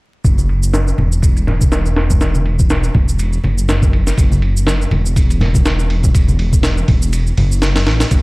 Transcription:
0.24 0.93 F#1 medium
0.24 kick loud
0.24 ride medium
0.24 shaker soft
0.38 high conga medium
0.38 shaker soft
0.49 ride medium
0.63 shaker medium
0.74 snare loud
0.74 ride medium
0.74 shaker medium
0.88 shaker soft
0.98 2.90 E1 medium
0.98 ride medium
0.98 high conga medium
0.98 low conga medium
1.12 shaker medium
1.22 kick loud
1.22 ride medium
1.22 shaker medium
1.36 ride soft
1.36 shaker soft
1.47 snare soft
1.47 ride medium
1.47 low conga medium
1.61 kick medium
1.61 high conga medium
1.61 shaker medium
1.72 snare loud
1.72 ride medium
1.72 shaker soft
1.86 shaker soft
1.96 snare loud
1.96 ride medium
2.10 kick medium
2.10 low conga medium
2.10 shaker medium
2.21 snare loud
2.21 ride medium
2.21 shaker medium
2.35 high conga medium
2.35 shaker soft
2.46 ride medium
2.59 kick medium
2.59 shaker medium
2.70 snare loud
2.70 ride medium
2.70 shaker medium
2.84 shaker soft
2.95 3.38 E1 medium
2.95 kick medium
2.95 ride medium
2.95 low conga medium
3.09 shaker medium
3.19 ride medium
3.19 shaker medium
3.33 shaker soft
3.44 4.12 F#1 medium
3.44 ride medium
3.44 high conga medium
3.44 low conga medium
3.58 shaker medium
3.69 snare loud
3.69 ride medium
3.69 shaker medium
3.82 kick medium
3.82 shaker soft
3.93 ride medium
4.07 snare medium
4.07 shaker medium
4.18 4.86 F#1 medium
4.18 kick loud
4.18 ride medium
4.18 shaker medium
4.32 high conga medium
4.32 shaker soft
4.42 ride medium
4.57 shaker medium
4.67 snare loud
4.67 ride medium
4.67 shaker medium
4.82 shaker soft
4.91 6.83 E1 medium
4.91 ride medium
4.91 high conga medium
4.91 low conga medium
5.06 shaker medium
5.16 kick loud
5.16 ride medium
5.16 shaker soft
5.30 ride soft
5.30 shaker soft
5.41 snare soft
5.41 ride medium
5.41 low conga medium
5.54 kick medium
5.54 high conga medium
5.54 shaker medium
5.66 snare loud
5.66 ride medium
5.66 shaker medium
5.79 shaker soft
5.90 ride medium
6.04 kick medium
6.04 low conga medium
6.04 shaker medium
6.15 kick loud
6.15 ride medium
6.15 shaker soft
6.28 high conga medium
6.28 shaker soft
6.39 ride medium
6.53 kick medium
6.53 shaker medium
6.63 snare loud
6.63 ride medium
6.63 shaker medium
6.78 shaker soft
6.88 7.32 E1 medium
6.88 kick medium
6.88 ride medium
6.88 low conga medium
7.02 shaker medium
7.13 ride medium
7.13 shaker medium
7.27 shaker soft
7.37 7.88 F#1 medium
7.37 ride medium
7.37 high conga medium
7.37 low conga medium
7.52 shaker medium
7.62 snare loud
7.62 ride medium
7.62 shaker soft
7.76 snare loud
7.76 ride medium
7.76 shaker soft
7.87 8.04 A1 medium
7.87 snare loud
7.87 ride medium
8.00 snare loud
8.00 ride medium
8.00 shaker medium
8.11 8.22 F#1 medium
8.11 kick loud
8.11 ride medium
8.11 shaker soft

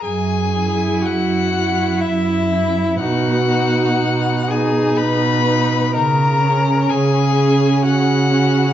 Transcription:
0.02 0.94 F#2 soft
0.02 1.04 G#4 soft
0.02 1.07 G#5 medium
0.56 1.52 E4 soft
1.02 2.02 F#4 medium
1.02 2.03 F#5 medium
1.07 1.92 F#2 soft
1.55 2.50 E4 soft
2.01 3.02 E4 medium
2.01 2.99 E5 medium
2.06 2.90 F#2 soft
2.53 2.99 E4 soft
3.00 3.88 B2 soft
3.00 3.47 D#4 soft
3.00 4.49 F#4 medium
3.00 4.52 F#5 medium
3.50 4.48 D#4 soft
4.00 4.88 B2 soft
4.48 5.45 D#4 soft
4.48 4.99 G#4 soft
4.48 4.99 G#5 medium
4.97 5.84 B2 soft
4.97 5.94 B4 medium
4.97 5.94 B5 medium
5.47 5.94 D#4 soft
5.94 6.80 C#3 soft
5.94 6.92 A#4 medium
5.94 6.91 A#5 medium
6.42 7.36 C#4 soft
6.89 7.75 C#3 soft
6.89 7.85 G#4 medium
6.89 7.85 G#5 medium
7.37 8.30 C#4 soft
7.85 8.69 C#3 soft
7.85 8.73 F#4 medium
7.85 8.73 F#5 medium
8.31 8.73 C#4 soft

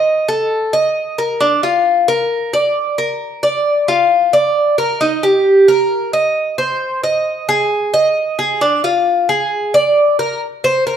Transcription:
0.00 0.27 D#5 medium
0.28 0.72 A4 medium
0.73 1.17 D#5 medium
1.18 1.40 A#4 medium
1.41 1.62 D4 medium
1.63 2.07 F4 medium
2.08 2.52 A#4 medium
2.53 2.97 D5 medium
2.98 3.42 A#4 medium
3.43 3.87 D5 medium
3.88 4.32 F4 medium
4.33 4.77 D5 medium
4.78 5.00 A#4 medium
5.01 5.23 D#4 medium
5.23 5.67 G4 medium
5.68 6.12 A#4 medium
6.13 6.57 D#5 medium
6.58 7.02 C5 medium
7.04 7.47 D#5 medium
7.49 7.92 G#4 medium
7.94 8.37 D#5 medium
8.39 8.61 G#4 medium
8.61 8.83 D4 medium
8.84 9.28 F4 medium
9.29 9.73 G#4 medium
9.74 10.18 D5 medium
10.19 10.41 A#4 medium
10.64 10.86 C5 medium
10.87 10.97 A#4 medium

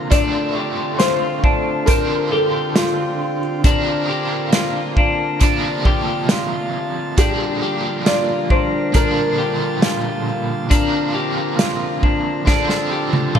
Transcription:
0.00 7.14 D3 medium
0.00 0.12 F3 medium
0.00 0.13 A#3 medium
0.00 7.14 C4 medium
0.00 0.15 D4 medium
0.00 0.12 F4 medium
0.00 12.44 F4 medium
0.00 0.14 A#4 medium
0.00 0.52 G5 medium
0.00 0.77 A#5 soft
0.00 1.01 C6 soft
0.10 1.86 D3 medium
0.10 1.86 A3 medium
0.10 1.88 A3 medium
0.10 1.89 C4 medium
0.10 0.56 D4 medium
0.10 1.02 D5 medium
0.10 kick loud
0.10 closed hi-hat medium
0.15 1.91 F4 medium
0.56 1.00 G4 medium
0.99 1.44 F4 medium
0.99 1.90 C5 medium
0.99 snare medium
0.99 closed hi-hat medium
1.44 1.87 D4 medium
1.44 3.22 A5 medium
1.44 kick medium
1.86 3.64 D3 medium
1.86 3.66 C4 medium
1.86 2.32 D4 medium
1.86 3.63 G4 medium
1.86 2.33 A#4 medium
1.86 kick medium
1.86 closed hi-hat medium
1.92 3.66 F4 medium
2.31 2.76 G4 medium
2.31 2.77 A4 medium
2.76 3.38 F4 medium
2.76 3.65 F4 medium
2.76 snare loud
2.76 closed hi-hat medium
3.64 4.09 C3 medium
3.64 4.09 F3 medium
3.64 4.10 A#3 medium
3.64 4.09 D4 medium
3.64 5.39 A#4 medium
3.64 4.07 A#4 medium
3.64 kick loud
3.64 closed hi-hat medium
4.08 5.43 D4 soft
4.08 4.53 G4 medium
4.08 5.43 A#4 soft
4.12 5.42 A#3 soft
4.53 4.97 F4 medium
4.53 snare medium
4.53 closed hi-hat medium
4.97 5.40 D4 medium
4.97 kick medium
5.40 7.17 C3 medium
5.40 7.18 F3 medium
5.40 7.18 A#3 medium
5.40 5.86 D4 medium
5.40 7.16 A5 medium
5.40 kick medium
5.40 closed hi-hat medium
5.44 7.19 D4 medium
5.44 7.19 A#4 medium
5.85 6.30 G4 medium
5.85 kick medium
6.29 7.18 F4 medium
6.29 snare loud
6.29 closed hi-hat medium
7.17 7.61 A#2 medium
7.17 7.62 D3 medium
7.17 13.39 D3 medium
7.17 7.62 F3 medium
7.17 10.68 G3 medium
7.17 7.62 A#3 medium
7.17 7.62 D4 medium
7.17 7.61 D4 medium
7.17 8.02 G4 medium
7.17 7.60 G4 medium
7.17 8.93 A#4 medium
7.17 kick loud
7.17 closed hi-hat medium
7.61 8.96 A#3 soft
7.61 8.98 D4 soft
7.61 8.98 G4 soft
7.61 8.06 G4 medium
7.66 8.95 F3 soft
8.06 8.50 F4 medium
8.06 8.48 D5 loud
8.06 snare medium
8.06 closed hi-hat medium
8.50 8.93 D4 medium
8.50 8.96 C5 medium
8.50 kick medium
8.92 10.70 A#2 medium
8.92 10.68 D3 medium
8.92 10.71 F3 medium
8.92 9.38 D4 medium
8.92 10.23 A#4 medium
8.92 10.70 A5 medium
8.92 kick medium
8.92 closed hi-hat medium
8.97 10.71 A#3 medium
8.97 10.73 D4 medium
8.97 10.73 G4 medium
9.38 9.82 G4 medium
9.82 10.71 F4 medium
9.82 snare loud
9.82 closed hi-hat medium
10.69 12.45 C3 medium
10.69 12.47 F3 medium
10.69 12.48 A#3 medium
10.69 13.39 C4 medium
10.69 11.15 D4 medium
10.69 12.46 A#4 medium
10.69 kick medium
10.69 closed hi-hat medium
10.74 12.50 D4 medium
10.74 12.49 A#4 medium
11.14 11.59 G4 medium
11.59 12.03 F4 medium
11.59 snare medium
11.59 closed hi-hat medium
12.03 12.46 D4 medium
12.03 kick medium
12.45 13.39 D3 medium
12.45 13.39 F3 medium
12.45 13.39 C4 medium
12.45 12.91 D4 medium
12.45 13.39 F4 medium
12.45 13.39 A4 medium
12.45 kick medium
12.45 snare medium
12.50 13.39 D4 medium
12.50 13.39 A4 medium
12.69 snare soft
12.91 13.35 G4 medium
13.13 high tom medium
13.35 13.39 F4 medium
13.35 mid tom medium

